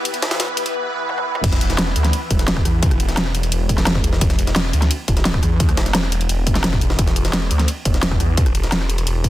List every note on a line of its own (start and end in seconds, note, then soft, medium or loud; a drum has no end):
0.00 1.40 E3 medium
0.00 1.40 B3 medium
0.00 1.40 E4 medium
0.00 1.43 B4 medium
0.05 closed hi-hat loud
0.05 ride medium
0.14 closed hi-hat soft
0.22 snare loud
0.22 closed hi-hat medium
0.22 ride medium
0.31 snare loud
0.31 closed hi-hat soft
0.31 ride medium
0.40 snare loud
0.40 closed hi-hat loud
0.40 ride medium
0.57 closed hi-hat medium
0.57 ride medium
0.66 closed hi-hat soft
0.66 ride soft
1.09 high tom medium
1.18 high tom medium
1.35 mid tom medium
1.44 1.94 E1 loud
1.44 kick loud
1.44 closed hi-hat loud
1.44 crash loud
1.44 ride medium
1.52 snare medium
1.52 closed hi-hat soft
1.61 closed hi-hat medium
1.61 ride medium
1.70 snare soft
1.70 closed hi-hat soft
1.78 snare loud
1.78 closed hi-hat loud
1.78 ride medium
1.96 2.12 D2 medium
1.96 closed hi-hat medium
1.96 ride medium
2.04 snare soft
2.04 closed hi-hat soft
2.13 closed hi-hat medium
2.13 ride medium
2.31 2.64 E1 loud
2.31 kick medium
2.31 closed hi-hat medium
2.31 ride medium
2.39 snare soft
2.39 closed hi-hat soft
2.48 snare loud
2.48 closed hi-hat medium
2.48 ride medium
2.57 kick loud
2.57 cross-stick medium
2.65 2.98 E2 loud
2.65 cross-stick soft
2.65 closed hi-hat medium
2.65 ride medium
2.83 kick loud
2.83 closed hi-hat medium
2.83 ride medium
2.91 cross-stick medium
2.91 closed hi-hat soft
3.00 3.51 E1 loud
3.00 closed hi-hat medium
3.00 ride medium
3.09 snare soft
3.09 closed hi-hat soft
3.17 snare loud
3.17 closed hi-hat loud
3.17 ride medium
3.26 cross-stick soft
3.35 closed hi-hat medium
3.35 ride medium
3.43 closed hi-hat soft
3.43 ride soft
3.52 3.85 E1 loud
3.52 closed hi-hat medium
3.52 ride medium
3.69 kick medium
3.69 closed hi-hat medium
3.69 ride medium
3.78 snare soft
3.78 snare medium
3.78 closed hi-hat soft
3.87 4.20 E1 loud
3.87 snare loud
3.87 closed hi-hat loud
3.87 ride medium
3.95 kick loud
3.95 snare soft
4.04 closed hi-hat medium
4.04 ride medium
4.13 snare medium
4.21 4.72 E1 loud
4.21 kick loud
4.21 closed hi-hat medium
4.21 ride medium
4.30 snare medium
4.30 closed hi-hat soft
4.39 closed hi-hat medium
4.39 ride medium
4.47 snare soft
4.47 closed hi-hat soft
4.56 snare loud
4.56 closed hi-hat medium
4.56 ride medium
4.73 4.89 D2 medium
4.73 closed hi-hat medium
4.73 ride medium
4.82 snare soft
4.82 closed hi-hat soft
4.91 closed hi-hat medium
4.91 ride medium
5.08 5.41 E1 loud
5.08 kick medium
5.08 closed hi-hat medium
5.08 ride medium
5.17 snare soft
5.17 closed hi-hat soft
5.25 snare loud
5.25 closed hi-hat medium
5.25 ride medium
5.34 kick loud
5.34 cross-stick soft
5.43 5.76 E2 medium
5.43 cross-stick soft
5.43 closed hi-hat medium
5.43 ride medium
5.60 kick loud
5.60 closed hi-hat medium
5.60 ride medium
5.69 cross-stick soft
5.69 closed hi-hat soft
5.77 6.28 E1 loud
5.77 snare loud
5.77 closed hi-hat medium
5.77 ride medium
5.86 snare soft
5.86 closed hi-hat soft
5.95 snare loud
5.95 closed hi-hat medium
5.95 ride medium
6.03 cross-stick soft
6.12 closed hi-hat medium
6.12 ride medium
6.21 closed hi-hat soft
6.21 ride soft
6.29 6.97 E1 loud
6.29 closed hi-hat medium
6.29 ride medium
6.47 kick medium
6.47 closed hi-hat medium
6.47 ride medium
6.55 snare soft
6.55 snare medium
6.55 closed hi-hat soft
6.64 snare loud
6.64 closed hi-hat medium
6.64 ride medium
6.73 kick loud
6.73 snare soft
6.81 closed hi-hat medium
6.81 ride medium
6.90 snare medium
6.99 7.49 E1 loud
6.99 kick loud
6.99 closed hi-hat medium
6.99 ride medium
7.07 snare medium
7.07 closed hi-hat soft
7.16 closed hi-hat medium
7.16 ride medium
7.25 snare soft
7.25 closed hi-hat soft
7.33 snare loud
7.33 closed hi-hat medium
7.33 ride medium
7.51 7.67 D2 loud
7.51 closed hi-hat medium
7.51 ride medium
7.59 snare soft
7.59 closed hi-hat soft
7.68 closed hi-hat medium
7.68 ride medium
7.85 8.19 E1 loud
7.85 kick medium
7.85 closed hi-hat medium
7.85 ride medium
7.94 snare soft
7.94 closed hi-hat soft
8.03 snare loud
8.03 closed hi-hat medium
8.03 ride medium
8.11 kick loud
8.11 cross-stick soft
8.20 8.53 E2 medium
8.20 cross-stick soft
8.20 closed hi-hat medium
8.20 ride medium
8.37 kick loud
8.37 closed hi-hat medium
8.37 ride medium
8.46 cross-stick soft
8.46 closed hi-hat soft
8.55 9.05 E1 loud
8.55 closed hi-hat medium
8.55 ride medium
8.63 snare soft
8.63 closed hi-hat soft
8.72 snare loud
8.72 closed hi-hat loud
8.72 ride medium
8.81 cross-stick soft
8.89 closed hi-hat medium
8.89 ride medium
8.98 closed hi-hat soft
8.98 ride soft
9.07 9.29 E1 loud
9.07 closed hi-hat medium
9.07 ride medium
9.24 kick medium
9.24 closed hi-hat medium
9.24 ride medium